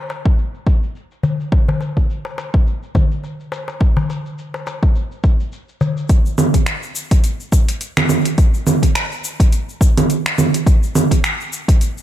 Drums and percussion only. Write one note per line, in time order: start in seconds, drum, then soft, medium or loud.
0.09 darbuka tek medium
0.09 shaker medium
0.26 kick loud
0.26 darbuka ka soft
0.38 shaker soft
0.54 shaker soft
0.67 kick medium
0.67 shaker medium
0.83 shaker soft
0.96 shaker soft
1.11 shaker soft
1.23 darbuka dum medium
1.23 shaker medium
1.40 shaker soft
1.52 kick loud
1.52 darbuka ka medium
1.52 shaker soft
1.68 darbuka tek medium
1.68 darbuka dum medium
1.68 shaker soft
1.81 darbuka ka medium
1.81 shaker medium
1.97 kick medium
1.97 shaker soft
2.10 shaker soft
2.25 darbuka tek medium
2.25 shaker soft
2.38 darbuka tek medium
2.38 shaker medium
2.54 kick medium
2.54 darbuka ka soft
2.54 shaker soft
2.67 shaker soft
2.83 shaker soft
2.95 kick medium
2.95 darbuka dum medium
2.95 shaker medium
3.11 shaker soft
3.24 darbuka ka soft
3.24 shaker soft
3.40 shaker soft
3.52 darbuka tek medium
3.52 shaker medium
3.68 darbuka tek medium
3.68 shaker soft
3.80 kick loud
3.80 darbuka ka medium
3.80 shaker soft
3.97 darbuka tek medium
3.97 darbuka dum medium
3.97 shaker soft
4.10 darbuka ka medium
4.10 shaker medium
4.26 shaker soft
4.38 shaker soft
4.54 darbuka tek medium
4.54 shaker soft
4.67 darbuka tek medium
4.67 shaker medium
4.83 kick loud
4.83 darbuka ka soft
4.83 shaker soft
4.95 shaker soft
5.12 shaker soft
5.24 kick medium
5.24 shaker medium
5.40 shaker soft
5.52 shaker soft
5.69 shaker soft
5.81 darbuka dum medium
5.81 shaker medium
5.97 shaker soft
6.09 kick loud
6.09 closed hi-hat soft
6.09 shaker soft
6.26 shaker soft
6.38 low conga medium
6.38 shaker medium
6.54 kick medium
6.54 closed hi-hat medium
6.54 shaker soft
6.66 finger snap medium
6.66 closed hi-hat soft
6.66 shaker soft
6.83 shaker soft
6.95 shaker medium
7.11 kick loud
7.11 closed hi-hat medium
7.11 shaker soft
7.24 closed hi-hat soft
7.24 shaker soft
7.40 shaker soft
7.52 kick medium
7.52 shaker medium
7.69 closed hi-hat medium
7.69 shaker soft
7.81 closed hi-hat soft
7.81 shaker soft
7.97 finger snap medium
7.97 low conga medium
7.97 shaker soft
8.09 low conga medium
8.09 shaker medium
8.25 closed hi-hat medium
8.25 shaker soft
8.38 kick loud
8.38 closed hi-hat soft
8.38 shaker soft
8.54 shaker soft
8.67 low conga medium
8.67 shaker medium
8.83 kick medium
8.83 closed hi-hat medium
8.83 shaker soft
8.95 finger snap medium
8.95 closed hi-hat soft
8.95 shaker soft
9.12 shaker soft
9.24 shaker medium
9.40 kick loud
9.40 closed hi-hat medium
9.40 shaker soft
9.52 closed hi-hat soft
9.52 shaker soft
9.69 shaker soft
9.81 kick loud
9.81 shaker medium
9.97 closed hi-hat medium
9.97 low conga medium
9.97 shaker soft
10.10 closed hi-hat soft
10.10 shaker soft
10.26 finger snap medium
10.26 shaker soft
10.38 low conga medium
10.38 shaker medium
10.54 closed hi-hat medium
10.54 shaker soft
10.67 kick loud
10.67 closed hi-hat soft
10.67 shaker soft
10.83 shaker soft
10.95 low conga medium
10.95 shaker medium
11.11 kick medium
11.11 closed hi-hat medium
11.11 shaker soft
11.24 finger snap medium
11.24 closed hi-hat soft
11.24 shaker soft
11.41 shaker soft
11.53 shaker medium
11.68 kick loud
11.68 closed hi-hat medium
11.68 shaker soft
11.81 closed hi-hat soft
11.81 shaker soft
11.98 shaker soft